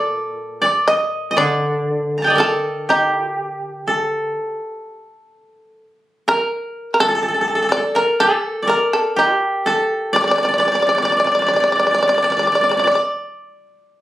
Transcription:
0.00 1.38 A#2 soft
0.00 1.58 A4 soft
0.00 0.61 D5 medium
0.00 0.84 D5 medium
0.62 0.94 D5 medium
0.88 1.35 D#5 medium
0.88 1.30 D#5 medium
1.31 1.43 D#5 medium
1.37 4.34 D3 soft
1.37 2.30 D5 medium
1.37 2.35 D5 medium
2.18 2.44 A#5 soft
2.22 3.59 G5 soft
2.22 2.42 A5 soft
2.27 3.90 D5 soft
2.27 3.82 D#5 soft
2.35 3.87 A4 medium
2.35 3.94 A#4 soft
2.40 2.86 A4 medium
2.89 3.36 D#4 medium
2.89 4.93 G4 medium
3.36 4.31 G4 medium
3.88 5.78 A4 soft
6.28 7.06 A#4 medium
6.28 6.90 A#4 medium
6.94 7.00 A#4 medium
7.00 7.08 A4 medium
7.00 7.67 A4 medium
7.08 7.15 A4 soft
7.15 7.22 A4 soft
7.23 7.28 A4 soft
7.28 7.34 A4 soft
7.34 7.41 A4 soft
7.41 7.47 A4 soft
7.48 7.55 A4 soft
7.55 7.62 A4 soft
7.62 7.68 A4 soft
7.69 7.76 A4 soft
7.69 7.94 D5 loud
7.77 8.01 A4 soft
7.95 8.26 A#4 medium
7.95 8.18 A#4 medium
8.20 8.73 A4 medium
8.20 8.65 A4 medium
8.63 10.13 D5 medium
8.67 9.72 A#4 medium
8.67 8.92 A#4 medium
8.93 9.16 A4 medium
9.16 11.20 G4 medium
9.16 9.63 G4 medium
9.66 11.56 A4 medium
9.66 10.12 A4 medium
10.13 10.20 D5 medium
10.13 10.22 D5 medium
10.21 10.27 D5 soft
10.21 10.30 D5 soft
10.27 10.35 D5 medium
10.27 10.37 D5 medium
10.36 10.42 D5 soft
10.36 10.44 D5 soft
10.43 10.48 D5 medium
10.43 10.51 D5 medium
10.49 10.58 D5 soft
10.54 10.59 D5 soft
10.58 10.65 D5 medium
10.58 10.66 D5 medium
10.65 10.71 D5 soft
10.65 10.74 D5 soft
10.72 10.79 D5 soft
10.72 10.81 D5 medium
10.80 10.86 D5 soft
10.80 10.88 D5 soft
10.87 10.94 D5 soft
10.87 10.95 D5 medium
10.95 11.02 D5 soft
10.95 11.03 D5 soft
11.02 11.09 D5 soft
11.02 11.10 D5 medium
11.09 11.16 D5 soft
11.09 11.18 D5 soft
11.17 11.24 D5 soft
11.17 11.25 D5 soft
11.24 11.31 D5 soft
11.24 11.32 D5 soft
11.32 11.39 D5 soft
11.32 11.40 D5 soft
11.39 11.46 D5 soft
11.39 11.47 D5 soft
11.46 11.53 D5 soft
11.46 11.54 D5 soft
11.54 11.60 D5 soft
11.54 11.62 D5 soft
11.60 11.67 D5 soft
11.60 11.69 D5 soft
11.68 11.75 D5 soft
11.72 11.77 D5 soft
11.72 11.82 D5 soft
11.80 11.85 D5 soft
11.80 11.90 D5 soft
11.87 11.92 D5 soft
11.91 11.98 D5 soft
11.91 12.00 D5 soft
11.98 12.07 D5 soft
12.03 12.08 D5 soft
12.08 12.14 D5 soft
12.08 12.15 D5 soft
12.14 12.22 D5 soft
12.14 12.23 D5 soft
12.22 12.30 D5 soft
12.30 12.36 D5 soft
12.30 12.38 D5 soft
12.37 12.43 D5 soft
12.37 12.46 D5 medium
12.43 12.52 D5 soft
12.47 12.53 D5 soft
12.52 12.61 D5 soft
12.61 12.69 D5 soft
12.61 12.70 D5 soft
12.69 12.77 D5 soft
12.77 12.83 D5 soft
12.77 12.85 D5 soft
12.84 12.91 D5 soft
12.84 12.93 D5 soft
12.91 14.01 D5 soft
12.91 13.01 D5 soft

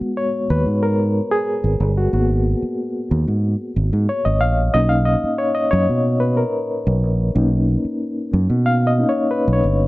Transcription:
0.00 2.09 G#3 medium
0.00 2.09 B3 soft
0.00 1.96 F#4 medium
0.00 muted fingered electric bass stroke soft
0.17 0.47 C#5 medium
0.50 0.63 D#2 medium
0.50 0.84 B4 medium
0.66 1.19 G#2 medium
0.83 1.28 A#4 medium
1.31 1.99 G#4 medium
1.64 1.77 G#1 medium
1.80 2.07 G1 medium
1.98 2.13 F#4 medium
2.13 2.53 G#1 medium
2.13 2.56 A#3 soft
2.13 2.57 B3 soft
2.13 2.57 F#4 medium
2.62 muted fingered electric bass stroke soft
3.11 3.24 D#2 medium
3.28 3.54 G#2 medium
3.76 3.90 G#1 medium
3.93 4.06 G#2 medium
4.09 4.24 C#5 medium
4.25 4.42 G#1 medium
4.25 4.42 D#5 medium
4.41 4.68 A#1 medium
4.41 4.75 F5 loud
4.74 5.14 B1 loud
4.74 5.17 A#3 medium
4.74 5.18 C#4 medium
4.74 5.18 D#4 medium
4.74 4.91 D#5 loud
4.89 4.97 F5 loud
5.05 5.20 D#5 medium
5.24 muted fingered electric bass stroke soft
5.38 5.56 C#5 loud
5.55 5.70 D#5 medium
5.71 5.86 F#2 loud
5.71 6.22 C#5 medium
5.89 6.42 B2 medium
6.20 6.37 B4 medium
6.37 6.98 A#4 medium
6.87 7.03 B1 medium
7.03 7.30 A#1 medium
7.35 7.75 B1 loud
7.35 8.29 A#3 medium
7.35 8.29 C#4 medium
7.35 8.29 D#4 medium
7.85 muted fingered electric bass stroke soft
8.33 8.47 F#2 medium
8.50 9.03 B2 medium
8.66 8.86 F5 loud
8.87 9.10 D#5 medium
8.98 9.28 A#3 soft
8.98 9.28 C#4 soft
8.98 9.28 D#4 medium
9.09 9.29 C#5 medium
9.31 9.53 B4 medium
9.48 9.61 B1 medium
9.53 9.88 C#5 medium
9.64 9.88 G1 medium

